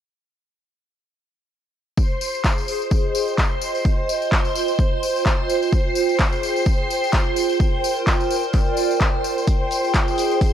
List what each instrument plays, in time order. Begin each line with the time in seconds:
1.97 ambient pad F4, string machine C5 C6, kick, tambourine
2.14 ambient pad G#4
2.21 tambourine
2.35 tambourine
2.44 ambient pad D#5, kick, clap, tambourine
2.58 tambourine
2.68 tambourine
2.82 ambient pad G5, tambourine
2.91 kick, tambourine
3.15 tambourine
3.28 tambourine
3.38 kick, clap, tambourine
3.61 tambourine
3.75 tambourine
3.85 kick, tambourine
4.09 tambourine
4.20 ambient pad C5, tambourine
4.32 kick, clap, tambourine
4.45 tambourine
4.55 tambourine
4.68 tambourine
4.79 kick, tambourine
5.03 tambourine
5.16 tambourine
5.26 kick, clap, tambourine
5.50 tambourine
5.62 tambourine
5.72 kick, tambourine
5.95 tambourine
6.05 ambient pad G#4, tambourine
6.19 kick, clap, tambourine
6.32 tambourine
6.43 tambourine
6.56 tambourine
6.66 kick, tambourine
6.91 tambourine
7.04 tambourine
7.13 kick, clap, tambourine
7.36 tambourine
7.49 ambient pad A#4, tambourine
7.60 kick, tambourine
7.84 tambourine
7.96 tambourine
8.07 kick, clap, tambourine
8.20 tambourine
8.27 ambient pad D5, tambourine
8.43 tambourine
8.53 kick, clap, tambourine
8.77 tambourine
8.91 tambourine
9.01 kick, clap, tambourine
9.24 tambourine
9.38 tambourine
9.47 string machine C5 C6, kick, closed hi-hat, tambourine
9.69 ambient pad G#4 D#5, closed hi-hat, tambourine
9.84 tambourine
9.94 kick, snare, clap, closed hi-hat, tambourine
10.08 tambourine
10.18 closed hi-hat, tambourine
10.31 tambourine
10.41 kick, closed hi-hat, tambourine